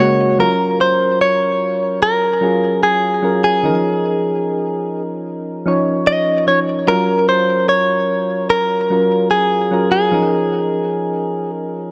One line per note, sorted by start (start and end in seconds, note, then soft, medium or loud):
0.00 0.25 C#3 medium
0.00 0.26 G#3 medium
0.00 0.26 A#3 medium
0.00 0.27 F#4 loud
0.00 0.40 C#5 loud
0.39 1.47 F#3 medium
0.39 1.48 C#4 medium
0.39 1.48 F4 medium
0.39 0.80 A#4 loud
0.39 1.49 A#4 medium
0.81 1.21 C5 medium
1.21 2.02 C#5 medium
2.03 2.83 A#4 loud
2.41 2.96 F#3 medium
2.41 2.96 C#4 medium
2.41 2.96 F4 medium
2.41 2.97 G#4 medium
2.83 3.43 G#4 medium
3.22 3.50 F#3 medium
3.22 3.50 C#4 medium
3.22 3.50 F4 medium
3.22 3.51 A#4 medium
3.44 5.02 G#4 medium
3.63 3.70 D#3 medium
3.63 4.72 C#4 medium
3.63 4.72 D#4 medium
3.63 4.73 A#4 medium
3.70 4.75 F3 medium
5.65 6.20 F3 medium
5.65 6.20 C#4 medium
5.65 6.21 D#4 medium
5.65 6.21 C#5 medium
6.07 6.47 D#5 loud
6.47 6.74 F3 medium
6.47 6.74 C#4 medium
6.47 6.75 D#4 medium
6.47 6.59 C#5 loud
6.47 6.75 C#5 medium
6.87 7.96 F#3 medium
6.87 7.96 C#4 medium
6.87 7.97 F4 medium
6.87 7.28 A#4 loud
6.87 7.97 A#4 medium
7.29 7.69 C5 loud
7.69 8.50 C#5 loud
8.50 9.30 A#4 loud
8.90 9.44 F#3 medium
8.90 9.45 C#4 medium
8.90 9.45 F4 medium
8.90 9.46 A#4 medium
9.31 9.91 G#4 medium
9.71 9.98 F#3 medium
9.71 9.99 C#4 medium
9.71 9.99 F4 medium
9.71 10.00 A#4 medium
9.92 11.50 G#4 medium
10.12 11.20 F3 medium
10.12 11.21 C#4 medium
10.12 11.21 D#4 medium
10.12 11.22 A#4 medium